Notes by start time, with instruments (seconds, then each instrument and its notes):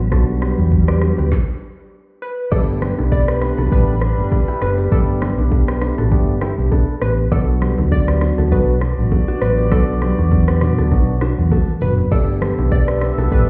Already playing: fingered electric bass A1, swell
0.11 fingered electric bass B1, tine electric piano F#3 B3 D4 F#4, clean electric guitar F#4 A4, kick, cross-stick, shaker
0.29 shaker
0.41 clean electric guitar G4 B4, cross-stick, shaker
0.58 fingered electric bass E2, clean electric guitar G4 B4, shaker
0.71 kick, shaker
0.88 clean electric guitar B4 D5, cross-stick, shaker
1.01 tine electric piano F#3 B3 D4 F#4, cross-stick, shaker
1.18 fingered electric bass D2, clean electric guitar G4 B4, shaker
1.32 kick, snare
2.22 synth pluck B4
2.51 fingered electric bass G1, horn section G3 D4 B4, tine electric piano A3 B3 D4 G4, synth pluck A4, clean electric guitar B4 D5, kick, crash, low conga, shaker
2.69 shaker
2.81 clean electric guitar G4 B4, cross-stick, low conga, shaker
2.98 fingered electric bass B1, tine electric piano A3 B3 D4 G4, low bongo, shaker
3.11 synth pluck D5, kick, high bongo, shaker
3.28 clean electric guitar G4 B4, cross-stick, shaker
3.41 tine electric piano A3 B3 D4 G4, cross-stick, open hi-hat, low bongo, shaker
3.58 fingered electric bass B1, clean electric guitar F#4 A4, low bongo, shaker
3.71 fingered electric bass A1, tine electric piano A3 B3 D4 G4, clean electric guitar D4 A4, synth pluck B4, kick, low conga, shaker
3.87 shaker
4.01 cross-stick, low bongo, shaker
4.18 fingered electric bass G1, tine electric piano A3 B3 D4 G4, shaker
4.32 kick, high bongo, shaker
4.48 clean electric guitar E4 G4, shaker
4.61 fingered electric bass F#1, tine electric piano A3 B3 D4 G4, synth pluck B4, cross-stick, shaker
4.78 clean electric guitar G4 B4, shaker
4.91 fingered electric bass G1, tine electric piano A3 B3 D4 G4, synth pluck A4, clean electric guitar B4 D5, kick, low conga, shaker
5.09 shaker
5.21 clean electric guitar G4 B4, cross-stick, low conga, shaker
5.37 fingered electric bass B1, tine electric piano A3 B3 D4 G4, low bongo, shaker
5.51 kick, high bongo, shaker
5.68 clean electric guitar G4 B4, cross-stick, shaker
5.81 tine electric piano A3 B3 D4 G4, cross-stick, open hi-hat, low bongo, shaker
5.98 fingered electric bass A1, clean electric guitar F#4 A4, low bongo, shaker
6.11 fingered electric bass G1, tine electric piano A3 B3 D4 G4, kick, low conga, shaker
6.27 shaker
6.41 clean electric guitar E4 G4, cross-stick, low bongo, shaker
6.58 fingered electric bass B1, tine electric piano A3 B3 D4 G4, shaker
6.72 clean electric guitar D4 A4, kick, high bongo, shaker
6.89 shaker
7.01 fingered electric bass A1, tine electric piano A3 B3 D4 G4, synth pluck B4, cross-stick, shaker
7.19 shaker
7.31 fingered electric bass B1, tine electric piano F#3 B3 D4 F#4, synth pluck A4, clean electric guitar B4 D5, kick, low conga, shaker
7.49 shaker
7.61 clean electric guitar G4 B4, cross-stick, low conga, shaker
7.77 fingered electric bass D2, tine electric piano F#3 B3 D4 F#4, low bongo, shaker
7.91 synth pluck D5, kick, high bongo, shaker
8.08 clean electric guitar G4 B4, cross-stick, shaker
8.21 tine electric piano F#3 B3 D4 F#4, cross-stick, open hi-hat, low bongo, shaker
8.38 fingered electric bass D2, clean electric guitar F#4 A4, low bongo, shaker
8.51 fingered electric bass B1, tine electric piano F#3 B3 D4 F#4, horn section B3 F#4 D5, clean electric guitar F#4 A4, synth pluck B4, kick, low conga, shaker
8.67 shaker
8.81 cross-stick, low bongo, shaker
8.98 fingered electric bass A1, tine electric piano F#3 B3 D4 F#4, shaker
9.12 kick, high bongo, shaker
9.28 clean electric guitar D4 F#4, shaker
9.41 fingered electric bass A1, tine electric piano F#3 B3 D4 F#4, synth pluck B4, cross-stick, shaker
9.58 clean electric guitar G4 B4, shaker
9.72 fingered electric bass B1, tine electric piano F#3 B3 D4 F#4, synth pluck A4, clean electric guitar B4 D5, kick, cross-stick, low conga, shaker
9.89 shaker
10.01 clean electric guitar G4 B4, cross-stick, low conga, shaker
10.17 fingered electric bass E2, tine electric piano F#3 B3 D4 F#4, low bongo, shaker
10.31 kick, high bongo, shaker
10.48 clean electric guitar G4 B4, cross-stick, shaker
10.61 tine electric piano F#3 B3 D4 F#4, cross-stick, mid tom, open hi-hat, low bongo, shaker
10.78 fingered electric bass D2, clean electric guitar F#4 A4, low bongo, shaker
10.91 fingered electric bass B1, tine electric piano F#3 B3 D4 F#4, kick, low conga, shaker
11.07 shaker
11.21 clean electric guitar D4 F#4, cross-stick, low bongo, shaker
11.38 fingered electric bass E2, tine electric piano F#3 B3 D4 F#4, shaker
11.52 clean electric guitar F#4 A4, kick, high tom, high bongo, shaker
11.68 mid tom, shaker
11.81 fingered electric bass F#1, tine electric piano F#3 B3 D4 F#4, synth pluck B4, mid tom, open hi-hat, shaker
11.98 floor tom, shaker
12.11 fingered electric bass G1, tine electric piano A3 B3 D4 G4, horn section B3 A4 E5, synth pluck A4, clean electric guitar B4 D5, kick, crash, low conga
12.29 shaker
12.41 clean electric guitar G4 B4, cross-stick, low conga, shaker
12.57 fingered electric bass B1, tine electric piano A3 B3 D4 G4, low bongo, shaker
12.71 synth pluck D5, kick, high bongo, shaker
12.88 clean electric guitar G4 B4, cross-stick, shaker
13.01 tine electric piano A3 B3 D4 G4, cross-stick, open hi-hat, low bongo, shaker
13.18 fingered electric bass B1, clean electric guitar F#4 A4, low bongo, shaker
13.31 fingered electric bass A1, tine electric piano A3 B3 D4 G4, clean electric guitar D4 A4, synth pluck B4, kick, low conga, shaker